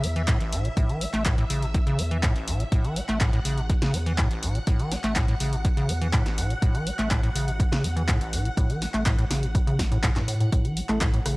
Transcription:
Already playing: E5
0.04 E2 A3, open hi-hat
0.16 E3, closed hi-hat
0.28 A2, kick, clap, closed hi-hat
0.40 A1, closed hi-hat
0.52 A2, open hi-hat
0.65 B2, closed hi-hat
0.77 A1 A2, kick, closed hi-hat
0.89 E3, closed hi-hat
1.01 A3, open hi-hat
1.14 A1 A3, clap, closed hi-hat
1.26 A2, kick, clap, closed hi-hat
1.38 A2, closed hi-hat
1.50 A1 C#3, open hi-hat
1.62 B2, closed hi-hat
1.74 A2, kick, closed hi-hat
1.87 C#3, closed hi-hat
1.99 E2 A3, open hi-hat
2.11 E3, closed hi-hat
2.23 A2, kick, clap, closed hi-hat
2.36 A1, closed hi-hat
2.48 A2, open hi-hat
2.60 B2, closed hi-hat
2.72 A1 A2 F#5, kick, closed hi-hat
2.84 E3, closed hi-hat
2.96 A3, open hi-hat
3.09 A1 A3, clap, closed hi-hat
3.21 A2, kick, clap, closed hi-hat
3.33 A2, closed hi-hat
3.45 A1 C#3, open hi-hat
3.58 B2, closed hi-hat
3.69 A2, kick, closed hi-hat
3.82 C#3, snare, closed hi-hat
3.94 E2 A3, open hi-hat
4.06 E3, closed hi-hat
4.18 A2, kick, clap, closed hi-hat
4.31 A1, closed hi-hat
4.43 A2, open hi-hat
4.55 B2, closed hi-hat
4.67 A1 A2, kick, closed hi-hat
4.80 E3, closed hi-hat
4.92 A3, snare, open hi-hat
5.04 A1 A3, clap, closed hi-hat
5.16 A2, kick, clap, closed hi-hat
5.28 A2, closed hi-hat
5.40 A1 C#3, open hi-hat
5.53 B2, closed hi-hat
5.65 A2, kick, closed hi-hat
5.77 C#3, closed hi-hat
5.89 E2 A3, open hi-hat
6.01 E3, closed hi-hat
6.13 A2, kick, clap, closed hi-hat
6.26 A1, snare, closed hi-hat
6.38 A2, open hi-hat
6.50 B2, closed hi-hat
6.62 A1 A2, kick, closed hi-hat
6.74 E3, closed hi-hat
6.86 A3, open hi-hat
6.99 A1 A3, clap, closed hi-hat
7.11 A2, kick, clap, closed hi-hat
7.23 A2, closed hi-hat
7.35 A1 C#3, open hi-hat
7.48 B2, closed hi-hat
7.60 A2, kick, closed hi-hat
7.72 C#3, snare, closed hi-hat
7.84 E2 A3, open hi-hat
7.96 E3, closed hi-hat
8.08 A2, kick, clap, closed hi-hat
8.21 A1, closed hi-hat
8.33 A2, open hi-hat
8.45 B2, closed hi-hat
8.57 A1 A2, kick, closed hi-hat
8.70 E3, closed hi-hat
8.82 A3, snare, open hi-hat
8.94 A1 A3, clap, closed hi-hat
9.06 A2, kick, clap, closed hi-hat
9.18 A2, closed hi-hat
9.30 A1 C#3, snare, open hi-hat
9.43 B2, closed hi-hat
9.55 A2, kick, closed hi-hat
9.67 C#3, closed hi-hat
9.79 A1 A3, kick, snare, open hi-hat
9.92 A2, closed hi-hat
10.04 A2, kick, clap, closed hi-hat
10.16 G2 A2, snare, clap, closed hi-hat
10.28 A2, open hi-hat
10.40 A2, closed hi-hat
10.52 A1 A2 F#5, kick, closed hi-hat
10.65 E3, closed hi-hat
10.77 A3, open hi-hat
10.89 A1 A3 E4 A4, cross-stick, clap, closed hi-hat
11.01 A2, kick, clap, closed hi-hat
11.14 A2, closed hi-hat
11.26 A1 C#3, cross-stick, open hi-hat

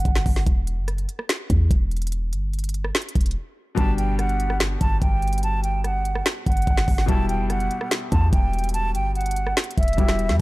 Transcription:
Already playing: F#5
0.05 G1, kick, closed hi-hat
0.15 finger snap, snare
0.26 G1, kick, open hi-hat
0.36 snare
0.47 E1, kick, closed hi-hat
0.67 closed hi-hat
0.77 F#1
0.88 cross-stick, closed hi-hat
0.98 closed hi-hat
1.09 closed hi-hat
1.19 cross-stick
1.29 finger snap, snare, closed hi-hat
1.50 E2, kick, closed hi-hat
1.71 E1, kick, closed hi-hat
1.91 closed hi-hat
1.97 closed hi-hat
2.02 closed hi-hat
2.07 closed hi-hat
2.12 closed hi-hat
2.33 G1, closed hi-hat
2.53 closed hi-hat
2.59 closed hi-hat
2.64 closed hi-hat
2.69 closed hi-hat
2.74 closed hi-hat
2.84 cross-stick
2.95 finger snap, snare, closed hi-hat
3.02 closed hi-hat
3.09 closed hi-hat
3.15 E1, kick, closed hi-hat
3.21 closed hi-hat
3.26 closed hi-hat
3.31 closed hi-hat
3.75 G1 B2 G3 D4 A5, kick, closed hi-hat
3.80 G4
3.98 G5, closed hi-hat
4.19 F#5, cross-stick, closed hi-hat
4.29 closed hi-hat
4.40 closed hi-hat
4.50 cross-stick
4.60 finger snap, snare, closed hi-hat
4.81 G1 A5, kick, closed hi-hat
5.02 G1 G5, kick, closed hi-hat
5.22 closed hi-hat
5.27 closed hi-hat
5.33 closed hi-hat
5.38 closed hi-hat
5.43 A5, closed hi-hat
5.64 G5, closed hi-hat
5.84 F#5, cross-stick, closed hi-hat
6.05 closed hi-hat
6.15 cross-stick
6.26 finger snap, snare, closed hi-hat
6.46 G1 F#5, kick, closed hi-hat
6.52 closed hi-hat
6.57 closed hi-hat
6.62 closed hi-hat
6.67 G1, kick, closed hi-hat
6.77 finger snap, snare
6.88 G1, kick, open hi-hat
6.98 snare
7.06 E1 B2 G3 E4 A5, kick, closed hi-hat
7.12 G4
7.29 G5, closed hi-hat
7.40 F#1
7.50 F#5, cross-stick, closed hi-hat
7.60 closed hi-hat
7.71 closed hi-hat
7.81 cross-stick
7.91 finger snap, snare, closed hi-hat
8.12 E2 A5, kick, closed hi-hat
8.33 E1 G5, kick, closed hi-hat
8.53 closed hi-hat
8.59 closed hi-hat
8.64 closed hi-hat
8.69 closed hi-hat
8.74 A5, closed hi-hat
8.95 G1 G5, closed hi-hat
9.15 F#5, closed hi-hat
9.21 closed hi-hat
9.26 closed hi-hat
9.31 closed hi-hat
9.36 closed hi-hat
9.47 cross-stick
9.57 finger snap, snare, closed hi-hat
9.64 closed hi-hat
9.71 closed hi-hat
9.78 E1 E5, kick, closed hi-hat
9.83 closed hi-hat
9.88 closed hi-hat
9.93 B2, closed hi-hat
9.98 E1 G3 E4 G4, kick, closed hi-hat
10.09 finger snap, snare
10.19 closed hi-hat, open hi-hat
10.29 E2, snare, closed hi-hat

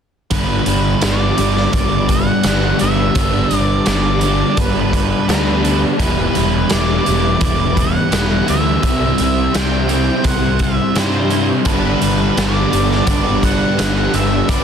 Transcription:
0.29 G1 G2 D3 G3 B3 G4 B4 D5 B5, kick, closed hi-hat
0.33 D4
0.66 G1 G3 B3 D4, closed hi-hat
1.01 G1 D3 G3 D5, snare, closed hi-hat
1.06 B3 D4
1.38 G1 G3 B3 D4, closed hi-hat
1.57 snare
1.73 G1 G2 D3 G3 B3 D4 D5, kick, closed hi-hat
2.09 G3 B3 D4 F#5, kick, closed hi-hat
2.43 G1 D3 G3 B3, snare, closed hi-hat
2.48 D4
2.79 G1 B3 D4 E5, closed hi-hat
2.84 G3
3.15 G1 G2 D3 G3 B3 D4 A5, kick, closed hi-hat
3.51 G1 G3 B3 D4, closed hi-hat
3.58 D5
3.86 G1 D3 G3 B3 D4 D5, snare, closed hi-hat
4.21 D4, closed hi-hat
4.25 G3 B3
4.57 G1 G2 D3 G3 B3 D4 B4, kick, closed hi-hat
4.93 G3 B3 D4 B4, kick, closed hi-hat
5.29 D2 D3 G3 B3 D4 B4, snare, closed hi-hat
5.63 G3 B3 D4, closed hi-hat
5.99 E1 E3 G3 B3 E4 B4 E5 B5, kick, closed hi-hat
6.03 B4
6.35 E1 G3 B3 E4, closed hi-hat
6.70 E1 E3 G3 B3 E4 D5, snare, closed hi-hat
7.06 E1 G3 B3 E4, closed hi-hat
7.40 E1 E3 G3 B3 E4, kick, closed hi-hat
7.44 D5
7.75 G3 B3 E4, kick, closed hi-hat
7.80 F#5
8.11 E1 E3 G3 B3 E4, snare, closed hi-hat
8.46 D2 G3 B3 E4 E5, closed hi-hat
8.81 C2 C3 G3 C4 E4 G4 C5 C6, kick, closed hi-hat
9.17 C2 G3 C4 E4, closed hi-hat
9.53 C2 C3 G3 C4 E4 G5, snare, closed hi-hat
9.88 G3 C4 E4, closed hi-hat
10.23 C2 C3 G3 C4 E4 F#5, kick, closed hi-hat
10.59 G3 C4 E4 E5, kick, closed hi-hat
10.94 G2 C3 G3 C4 E4 C5, snare, closed hi-hat
11.30 G3 C4 E4, closed hi-hat
11.65 G1 G2 D3 G3 B3 D4 B4 B5, kick, closed hi-hat
11.69 D5
12.01 G1 G3 B3 D4, closed hi-hat
12.37 G1 D3 G3 B3 D4 D5, snare, closed hi-hat
12.72 G1 G3 B3 D4, closed hi-hat
12.92 snare
13.07 G1 G2 D3 G3 B3 D4 D5, kick, closed hi-hat
13.43 G3 B3 D4 F#5, kick, closed hi-hat
13.78 G1 D3 G3 B3 D4, snare, closed hi-hat
14.14 G1 G3 B3 D4 E5, closed hi-hat
14.48 G1 G2 D3 G3 B3 D4 D5 E5, kick, closed hi-hat

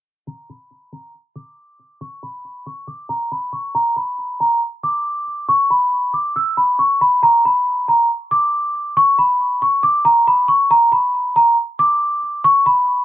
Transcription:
0.27 A#5
0.50 B5
0.93 A#5
1.36 D6
2.01 C#6
2.23 B5
2.67 C#6
2.88 D6
3.09 A#5
3.32 B5
3.53 C#6
3.75 A#5
3.96 B5
4.40 A#5
4.83 D6
5.49 C#6
5.70 B5
6.14 D6
6.36 E6
6.57 B5
6.79 C#6
7.01 B5
7.23 A#5
7.45 B5
7.88 A#5
8.31 D6
8.97 C#6
9.19 B5
9.62 C#6
9.83 D6
10.05 A#5
10.27 B5
10.48 C#6
10.71 A#5
10.92 B5
11.36 A#5
11.79 D6
12.44 C#6
12.66 B5

